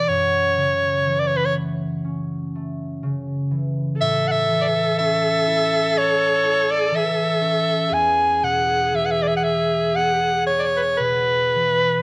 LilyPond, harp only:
\new Staff \with { instrumentName = "Harp" } { \clef bass \time 4/4 \key e \major \tempo 4 = 61 fis,8 cis8 e8 a8 cis'8 a8 cis8 e8 | a,8 e8 cis'8 e'8 a'8 e'8 e8 cis'8 | e,8 b,8 e8 gis8 b8 gis8 b,8 e8 | }